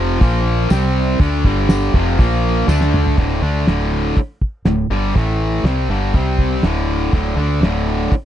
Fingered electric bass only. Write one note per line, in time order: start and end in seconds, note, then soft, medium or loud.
0.00 0.18 F1 loud
0.21 0.67 A#1 loud
0.71 1.17 C2 medium
1.20 1.43 D2 loud
1.44 1.90 G1 medium
1.94 2.17 F1 medium
2.18 2.65 A#1 medium
2.68 3.14 D2 medium
3.17 3.40 D1 medium
3.42 3.65 D2 medium
3.67 4.13 D1 medium
4.65 4.88 D1 medium
4.90 5.13 G1 medium
5.16 5.62 A1 medium
5.64 5.87 C2 medium
5.89 6.12 G1 medium
6.13 6.60 C2 medium
6.62 7.09 D1 medium
7.13 7.36 D1 medium
7.36 7.60 D2 medium
7.61 8.08 D1 medium